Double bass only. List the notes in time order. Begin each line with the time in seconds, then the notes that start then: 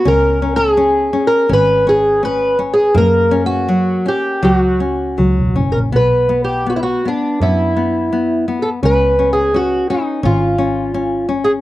0.06 C#2
1.50 G#1
2.95 F#2
4.43 C#2
5.19 C#2
5.38 E1
5.56 F#1
5.74 A#1
5.93 B1
7.41 F#2
8.83 C#2
10.24 G#1